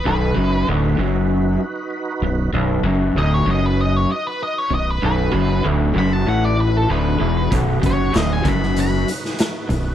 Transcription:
<<
  \new Staff \with { instrumentName = "Lead electric guitar" } { \time 4/4 \key b \major \tempo 4 = 96 b'4 r2. | r4 dis''16 cis''16 dis''16 b'16 dis''16 cis''16 dis''16 b'16 dis''16 cis''16 dis''16 b'16 | b'4 r8 b''16 a''16 fis''16 d''16 b'16 a'16 b'4 | r8 cis''8 dis''16 gis''16 b''8 b''8 r4. | }
  \new Staff \with { instrumentName = "Tonewheel organ" } { \time 4/4 \key b \major <dis' fis' b'>1 | <dis' fis' b'>1 | <dis' fis' b'>1 | <dis' fis' b'>1 | }
  \new Staff \with { instrumentName = "Overdriven electric guitar" } { \clef bass \time 4/4 \key b \major b,,8 fis,8 d,8 fis,4 r4 b,,8 | b,,8 fis,8 d,8 fis,4 r4 b,,8 | b,,8 fis,8 d,8 fis,8 a,4 d,8 e,8 | b,,8 fis,8 d,8 fis,4 r4 b,,8 | }
  \new Staff \with { instrumentName = "Fingered electric bass" } { \clef bass \time 4/4 \key b \major b,,,8 fis,,8 d,,8 fis,,4 r4 b,,,8 | b,,,8 fis,,8 d,,8 fis,,4 r4 b,,,8 | b,,,8 fis,,8 d,,8 fis,,8 a,,4 d,,8 e,,8 | b,,,8 fis,,8 d,,8 fis,,4 r4 b,,,8 | }
  \new DrumStaff \with { instrumentName = "Drums" } \drummode { \time 4/4 r4 r4 r4 r4 | r4 r4 r4 r4 | r4 r4 r4 r4 | <hh bd>8 <hh bd>8 <hh sn>8 <hh bd>16 sn16 hh8 hh16 sn16 <hh sn>8 hh8 | }
>>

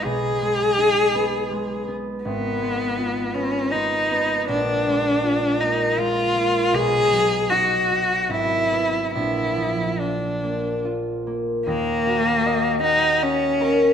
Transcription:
<<
  \new Staff \with { instrumentName = "Cello" } { \time 3/4 \key gis \dorian \tempo 4 = 79 gis'2~ gis'8 r8 | \key ees \minor ces'4. des'8 ees'4 | d'4. ees'8 f'4 | aes'4 fis'4 e'4 |
fes'4 d'4 r4 | bes4. ees'8 des'4 | }
  \new Staff \with { instrumentName = "Harp" } { \time 3/4 \key gis \dorian <b,, gis b dis'>8 gis8 dis'8 b8 gis8 b8 | \key ees \minor aes,,8 aes8 f'8 ces'8 aes8 ces'8 | bes,,8 aes8 f'8 bes8 aes8 bes8 | b,,8 fis8 dis'8 fis'8 gis,,8 <b e'>8 |
bes,,8 f8 f'8 bes8 f'8 bes8 | ees,8 ges'8 ees''8 ges''8 ees''8 bes'8 | }
>>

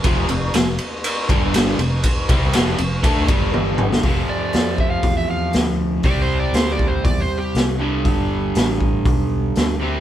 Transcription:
<<
  \new Staff \with { instrumentName = "Electric slide guitar" } { \time 4/4 \key f \lydian \tempo 4 = 120 r1 | r1 | r8 d''4 e''16 f''8 e''16 f''8 r4 | \tuplet 3/2 { d''8 c''8 d''8 c''8 d''8 c''8 d''8 c''8 g'8~ } g'16 r8. |
r1 | }
  \new Staff \with { instrumentName = "Overdriven electric guitar" } { \clef bass \time 4/4 \key f \lydian <f, c f>8 <f, c>8 <f, c>8 r4 <g, d g>4 <f, c>8 | r8 <c g c'>8 <f, c f>8 <f, c>8 <d a d'>8 <g, d g>4. | <f, c f>1 | <c g c'>2.~ <c g c'>8 <g, d g>8~ |
<g, d g>2.~ <g, d g>8 <c g c'>8 | }
  \new Staff \with { instrumentName = "Fretless electric bass" } { \clef bass \time 4/4 \key f \lydian f,,8 f,,8 f,,8 r4 g,,4 f,,8 | r8 c,8 f,,8 f,,8 d,8 g,,4. | f,,8 r8 f,4 e,4 d,4 | c,4 d,4 e,8 r8 c,4 |
g,,4 a,,4 b,,4 d,4 | }
  \new DrumStaff \with { instrumentName = "Drums" } \drummode { \time 4/4 <bd cymr>8 cymr8 <cymr sn>8 cymr8 cymr8 <bd cymr>8 <cymr sn>8 cymr8 | <bd cymr>8 <bd cymr>8 <cymr sn>8 cymr8 <bd cymr>8 <bd cymr>8 tommh8 toml16 sn16 | <hho bd>4 <hho sn>8 bd8 <hho bd>4 <hho sn>4 | <hho bd>4 <hho sn>8 bd8 <hho bd>4 <hho sn>4 |
<hho bd>4 <hho sn>8 bd8 <hho bd>4 <hho sn>4 | }
>>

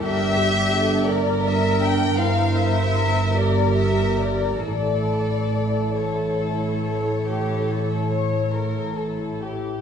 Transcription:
<<
  \new Staff \with { instrumentName = "Violin section" } { \time 12/8 \key a \phrygian \tempo 4. = 47 e''4. d''8 e''8 g''8 f''8 e''4 d''8 e''8 d''8 | d''4. cis''1 r8 | }
  \new Staff \with { instrumentName = "Violin section" } { \time 12/8 \key a \phrygian g'4. bes'4. bes'2. | a'4. a'4. g'8 a'8 cis''8 bes'8 a'8 g'8 | }
  \new Staff \with { instrumentName = "Viola section" } { \time 12/8 \key a \phrygian << { bes'8 g'8 a'8 bes'4. c''4. bes'4. | a'1~ a'4.~ a'16 r16 | } \\ { d'4. d'4. e'4. g'4. | e'1~ e'4.~ e'16 r16 | } >> }
  \new Staff \with { instrumentName = "Cello section" } { \clef bass \time 12/8 \key a \phrygian g,2. g,2. | a,1~ a,4.~ a,16 r16 | }
  \new Staff \with { instrumentName = "Double bass section" } { \clef bass \time 12/8 \key a \phrygian g,,2. g,,2. | a,,1~ a,,4.~ a,,16 r16 | }
>>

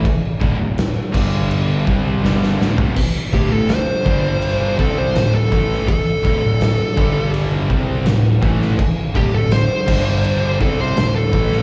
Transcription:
<<
  \new Staff \with { instrumentName = "Lead electric guitar" } { \time 4/4 \key g \minor \tempo 4 = 82 r1 | r8 g'16 a'16 c''4. a'16 c''8 a'8. | a'2 r2 | r8 g'16 a'16 c''4. a'16 c''8 a'8. | }
  \new Staff \with { instrumentName = "Distorted electric guitar" } { \clef bass \time 4/4 \key g \minor r8 <d, a,>16 <d, a,>8 r16 <g, d g>4 <c g c'>8 <g, d g>8 <d, a,>16 <f, c>16 | r8 <d, a,>16 <d, a,>8 r16 <g, d g>4 <c g c'>8 <d, a,>8 <a, e a>8 | r8 <d, a,>16 <d, a,>8 r16 <g, d g>4 <c g c'>8 <d, a,>8 <a, e a>8 | r8 <d, a,>16 <d, a,>8 r16 <g, d g>4 <c g c'>8 <d, a,>8 <a, e a>8 | }
  \new Staff \with { instrumentName = "Distorted electric guitar" } { \clef bass \time 4/4 \key g \minor r8 <d, a,>16 <d, a,>8 r16 <g, d g>4 <c g c'>8 <g, d g>8 <d, a,>16 <f, c>16 | r8 <d, a,>16 <d, a,>8 r16 <g, d g>4 <c g c'>8 <d, a,>8 <a, e a>8 | r8 <d, a,>16 <d, a,>8 r16 <g, d g>4 <c g c'>8 <d, a,>8 <a, e a>8 | r8 <d, a,>16 <d, a,>8 r16 <g, d g>4 <c g c'>8 <d, a,>8 <a, e a>8 | }
  \new Staff \with { instrumentName = "Distorted electric guitar" } { \clef bass \time 4/4 \key g \minor r8 <d, a,>16 <d, a,>8 r16 <g, d g>4 <c g c'>8 <g, d g>8 <d, a,>16 <f, c>16 | r8 <d, a,>16 <d, a,>8 r16 <g, d g>4 <c g c'>8 <d, a,>8 <a, e a>8 | r8 <d, a,>16 <d, a,>8 r16 <g, d g>4 <c g c'>8 <d, a,>8 <a, e a>8 | r8 <d, a,>16 <d, a,>8 r16 <g, d g>4 <c g c'>8 <d, a,>8 <a, e a>8 | }
  \new Staff \with { instrumentName = "Picked electric bass" } { \clef bass \time 4/4 \key g \minor r8 d,,16 d,,8 r16 g,,4 c,8 g,,8 d,,16 f,,16 | r8 d,,16 d,,8 r16 g,,4 c,8 d,,8 a,,8 | r8 d,,16 d,,8 r16 g,,4 c,8 d,,8 a,,8 | r8 d,,16 d,,8 r16 g,,4 c,8 d,,8 a,,8 | }
  \new DrumStaff \with { instrumentName = "Drums" } \drummode { \time 4/4 <cymc bd>8 bd8 <cymc sn>8 <cymc bd>8 cymc8 bd8 sn16 sn16 sn16 tomfh16 | <cymc bd>16 sn16 bd8 <cymc sn>8 bd8 cymc8 bd8 <cymc sn>8 bd16 sn16 | <cymc bd>8 bd8 <cymc sn>8 bd8 cymc8 bd8 <cymc sn>8 bd16 sn16 | <cymc bd>8 bd8 <cymc sn>8 <cymc bd>8 cymc8 bd8 <cymc sn>8 bd16 sn16 | }
>>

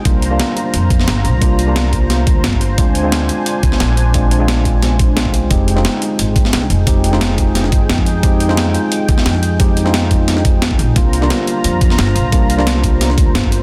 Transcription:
<<
  \new Staff \with { instrumentName = "Analog synth pad" } { \time 4/4 \key f \dorian \tempo 4 = 176 << { <f' bes''>1~ | <f' bes''>1 | <d' aes''>1~ | <d' aes''>1 |
<ees' g''>1~ | <ees' g''>1~ | <ees' g''>1~ | <ees' g''>1 |
<f' bes''>1~ | <f' bes''>1 | } \\ { c''1~ | c''1~ | c''1~ | c''1 |
aes'1~ | aes'1~ | aes'1~ | aes'1 |
c''1~ | c''1 | } >> }
  \new Staff \with { instrumentName = "Tine electric piano" } { \time 4/4 \key f \dorian <g bes d' f'>8. <g bes d' f'>2.~ <g bes d' f'>16 | <g bes d' f'>8. <g bes d' f'>2.~ <g bes d' f'>16 | <aes c' d' f'>8. <aes c' d' f'>2.~ <aes c' d' f'>16 | <aes c' d' f'>8. <aes c' d' f'>2~ <aes c' d' f'>16 <aes c' d' f'>4 |
<aes c' ees' g'>8. <aes c' ees' f'>2.~ <aes c' ees' f'>16 | <aes c' ees' g'>8. <aes c' ees' f'>2.~ <aes c' ees' f'>16 | <aes c' ees' g'>8. <aes c' ees' f'>2.~ <aes c' ees' f'>16 | <aes c' ees' g'>8. <aes c' ees' f'>2.~ <aes c' ees' f'>16 |
<g bes d' f'>8. <g bes d' f'>2.~ <g bes d' f'>16 | <g bes d' f'>8. <g bes d' f'>2.~ <g bes d' f'>16 | }
  \new Staff \with { instrumentName = "Upright bass" } { \clef bass \time 4/4 \key f \dorian c,4 r4 f,4 g,,8 c,8~ | c,2~ c,8 d,8 g,,4 | d,4. r4 c,8 bes,,4~ | bes,,2.~ bes,,8 c,8 |
f,,4 r4 aes,,4 c,8 f,,8~ | f,,2~ f,,8 g,,8 f,4~ | f,4. r4 ees,8 f,4~ | f,2.~ f,8 bes,,8 |
c,4 r4 f,4 g,,8 c,8~ | c,2~ c,8 d,8 g,,4 | }
  \new DrumStaff \with { instrumentName = "Drums" } \drummode { \time 4/4 <hh bd>8 hh8 <hh sn>8 hh8 hh8 <hh bd>16 sn16 <hh sn>8 hh8 | <hh bd>8 hh8 <hh sn>8 <hh bd>8 <hh sn>8 <hh bd>8 <hh sn>16 bd16 hh8 | <hh bd>8 hh8 <hh sn>8 hh8 hh8 <hh bd>16 sn16 <hh sn>8 hh8 | <hh bd>8 hh8 <hh sn>8 <hh bd>8 <hh sn>8 <hh bd>8 <hh sn>16 bd16 hh8 |
<hh bd>8 hh16 sn16 <hh sn>8 hh8 hh8 <hh bd>16 sn16 <hh sn>16 sn16 hh8 | <hh bd>8 hh16 sn16 <hh sn>8 <hh bd>8 <hh sn>16 sn16 <hh bd>8 <hh sn>16 bd16 hh8 | <hh bd>8 hh16 sn16 <hh sn>8 hh8 hh8 <hh bd>16 sn16 <hh sn>16 sn16 hh8 | <hh bd>8 hh16 sn16 <hh sn>8 <hh bd>8 <hh sn>16 sn16 <hh bd>8 <hh sn>16 bd16 hh8 |
<hh bd>8 hh16 sn16 <hh sn>8 hh8 hh8 <hh bd>16 sn16 <hh sn>16 sn16 hh8 | <hh bd>8 hh16 sn16 <hh sn>8 <hh bd>8 <hh sn>16 sn16 <hh bd>8 <hh sn>16 bd16 hh8 | }
>>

